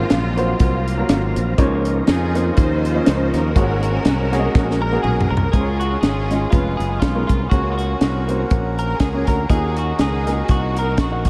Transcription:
Already playing: grand piano G#2, tonewheel organ F#3 C4 A#4 F5, string section A#3 C4 F4
0.10 fingered electric bass A#1, snare, closed hi-hat
0.37 grand piano A#3 F4 F#4 C5, closed hi-hat
0.59 fingered electric bass C2, string section A#3 C4 F4, kick, closed hi-hat
0.87 closed hi-hat
0.97 grand piano F#3 A#3 F4 A#4
1.09 fingered electric bass G#1, snare, closed hi-hat
1.36 fingered electric bass A#1, closed hi-hat
1.57 fingered electric bass C#2, grand piano C#3 A#3 D#4 F4 C#5, tonewheel organ F3 C#4 D#4 A#4, kick, closed hi-hat
1.85 closed hi-hat
2.07 fingered electric bass F2, string section D#4 F4 G#4, snare, closed hi-hat
2.34 grand piano A#3 D#4 F4 C5, snare, closed hi-hat
2.56 fingered electric bass D#2, string section D#4 F4 C5, kick, closed hi-hat
2.85 closed hi-hat
2.95 grand piano A#3 C#4 D#4 F4
3.06 fingered electric bass C#2, snare, closed hi-hat
3.34 fingered electric bass D#2, string section C#4 F#4 A#4, snare, closed hi-hat
3.55 fingered electric bass G#1, grand piano G#2 A#3 F#4 G#4 C#5, tonewheel organ G#3 C#4 F#4 A#4, kick, closed hi-hat
3.83 closed hi-hat
4.05 fingered electric bass C2, snare, closed hi-hat
4.32 grand piano A#3 F#4 G#4 C#5, snare, closed hi-hat
4.39 grand piano D#5
4.55 fingered electric bass A#1, kick, snare
4.71 snare
4.82 clean electric guitar A#4, string section A#4
4.92 grand piano A#3 F#4 G#4 A#4
5.03 fingered electric bass B1, clean electric guitar G#4, string section G#4, mid tom
5.21 floor tom
5.31 fingered electric bass C2, clean electric guitar A#4, string section A#4
5.37 floor tom
5.52 fingered electric bass C#2, grand piano C#3 G#3 C#4 F4 C5, string section C#4 F4 G#4, accordion C#4 G#4 F5 G#5, clean electric guitar G#4, kick, closed hi-hat
5.61 grand piano C#5
5.80 clean electric guitar F#4, string section F#4, closed hi-hat
6.01 fingered electric bass G#1, string section C#4 F4 G#4, clean electric guitar G#4, snare, closed hi-hat
6.30 grand piano G#3 C#4 F4 D#5, snare, closed hi-hat
6.50 fingered electric bass F1, grand piano G#3 C#4 F4 B4, string section G#3 B3 F4, clean electric guitar F4, accordion B4 F5, kick, closed hi-hat
6.77 fingered electric bass F#1, clean electric guitar G#4, string section G#4, closed hi-hat
7.00 fingered electric bass B1, clean electric guitar F4, string section F4, kick, snare, closed hi-hat
7.15 grand piano G#3 C#4 F4 A#4
7.27 fingered electric bass C2, clean electric guitar F4, string section F4, kick, closed hi-hat
7.50 fingered electric bass C#2, grand piano C#3 A#3 C#4 F#4 C#5, string section A#3 C#4 F#4, clean electric guitar F#4, accordion A#4 F#5 A#5, kick, closed hi-hat
7.72 clean electric guitar F4
7.78 string section A#3 C#4 F#4, clean electric guitar F#4, closed hi-hat
8.01 fingered electric bass C2, snare, closed hi-hat
8.28 grand piano A#3 C#4 F#4 C5, closed hi-hat
8.50 fingered electric bass A#1, kick, closed hi-hat
8.78 string section A#4, clean electric guitar A#4, closed hi-hat
8.99 fingered electric bass C#2, clean electric guitar G#4, string section G#4, kick, snare, closed hi-hat
9.14 grand piano A#3 C#4 F#4 C#5
9.27 fingered electric bass D2, string section A#4, clean electric guitar A#4, kick, snare, closed hi-hat
9.49 fingered electric bass D#2, grand piano D#3 A#3 D#4 F4 D#5, string section D#4 G#4, clean electric guitar G#4, accordion D#5, kick, closed hi-hat
9.56 grand piano F#4
9.76 string section F#4, clean electric guitar F#4, closed hi-hat
9.98 fingered electric bass C#2, string section D#4 G#4, clean electric guitar G#4, snare, closed hi-hat
10.26 grand piano A#3 D#4 F4 A#4, snare, closed hi-hat
10.33 grand piano F#4
10.48 fingered electric bass C2, string section A#3 D#4 F#4, clean electric guitar F#4, kick, closed hi-hat
10.76 string section A#4, clean electric guitar A#4, closed hi-hat
10.97 fingered electric bass A#1, string section F#4, clean electric guitar F#4, kick, snare, closed hi-hat
11.11 grand piano A#3 D#4 F#4 F#5
11.25 string section F#4, kick, snare, closed hi-hat

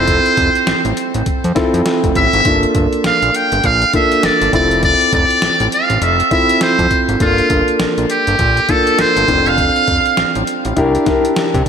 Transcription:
Already playing: analog synth bass F1, grand piano C4 E4 F4 A4, muted trumpet C5
0.08 kick, closed hi-hat
0.26 closed hi-hat
0.37 analog synth bass F1, kick, closed hi-hat
0.55 closed hi-hat
0.67 analog synth bass A1, snare, closed hi-hat
0.85 analog synth bass A1, closed hi-hat
0.97 closed hi-hat
1.14 analog synth bass A1, closed hi-hat
1.26 kick, closed hi-hat
1.44 analog synth bass F2, closed hi-hat
1.55 grand piano C4 E4 F4 A4, kick, snare, closed hi-hat
1.74 analog synth bass F2, closed hi-hat
1.86 snare, closed hi-hat
2.04 analog synth bass F1, kick, closed hi-hat
2.15 analog synth bass A1, muted trumpet E5, kick, closed hi-hat
2.33 analog synth bass G#1, closed hi-hat
2.45 analog synth bass G1, grand piano A#3 D4 F4 A4, kick, closed hi-hat
2.63 closed hi-hat
2.75 analog synth bass G1, kick, closed hi-hat
2.93 closed hi-hat
3.04 analog synth bass A#1, muted trumpet F5, snare, closed hi-hat
3.22 analog synth bass A#1, closed hi-hat
3.34 muted trumpet G5, closed hi-hat
3.52 analog synth bass G1, closed hi-hat
3.64 analog synth bass A#1, muted trumpet F5, kick, closed hi-hat
3.82 closed hi-hat
3.93 grand piano A#3 D4 F4 A4, muted trumpet E5, kick, closed hi-hat
4.12 closed hi-hat
4.23 analog synth bass G1, muted trumpet D5, snare, closed hi-hat
4.42 analog synth bass G1, closed hi-hat
4.53 analog synth bass F1, grand piano C4 E4 F4 A4, muted trumpet D5, kick, closed hi-hat
4.71 closed hi-hat
4.83 muted trumpet D5, kick, closed hi-hat
5.01 closed hi-hat
5.13 analog synth bass F1, muted trumpet D5, kick, closed hi-hat
5.30 closed hi-hat
5.42 analog synth bass A1, snare, closed hi-hat
5.60 analog synth bass A1, closed hi-hat
5.72 muted trumpet F5, closed hi-hat
5.90 analog synth bass A1, closed hi-hat
6.02 analog synth bass F1, muted trumpet E5, closed hi-hat
6.20 closed hi-hat
6.31 grand piano C4 E4 F4 A4, muted trumpet E5, kick, closed hi-hat
6.49 closed hi-hat
6.61 muted trumpet C5, snare, closed hi-hat
6.79 analog synth bass F2, kick, closed hi-hat
6.91 kick, closed hi-hat
7.09 analog synth bass G#1, closed hi-hat
7.20 analog synth bass G1, grand piano A#3 D4 F4 A4, muted trumpet F4, kick, closed hi-hat
7.38 closed hi-hat
7.50 analog synth bass G1, kick, closed hi-hat
7.68 closed hi-hat
7.80 analog synth bass A#1, snare, closed hi-hat
7.98 analog synth bass A#1, closed hi-hat
8.10 muted trumpet G4, closed hi-hat
8.27 analog synth bass G1, closed hi-hat
8.39 analog synth bass A#1, kick, closed hi-hat
8.57 closed hi-hat
8.69 grand piano A#3 D4 F4 A4, muted trumpet A4, kick, closed hi-hat
8.87 closed hi-hat
8.99 analog synth bass G1, muted trumpet C5, snare, closed hi-hat
9.17 analog synth bass G1, closed hi-hat
9.28 analog synth bass F1, grand piano C4 D4 F4 A4, kick, closed hi-hat
9.46 muted trumpet F5, closed hi-hat
9.58 kick, closed hi-hat
9.76 closed hi-hat
9.88 analog synth bass F1, kick, closed hi-hat
10.06 closed hi-hat
10.17 analog synth bass A1, snare, closed hi-hat
10.35 analog synth bass A1, closed hi-hat
10.47 closed hi-hat
10.65 analog synth bass A1, closed hi-hat
10.76 analog synth bass C2, grand piano D4 E4 G4 A#4, kick, closed hi-hat
10.95 closed hi-hat
11.06 grand piano D4 E4 G4 A#4, kick, snare, closed hi-hat
11.25 closed hi-hat
11.36 snare, closed hi-hat
11.54 analog synth bass C3, kick, closed hi-hat

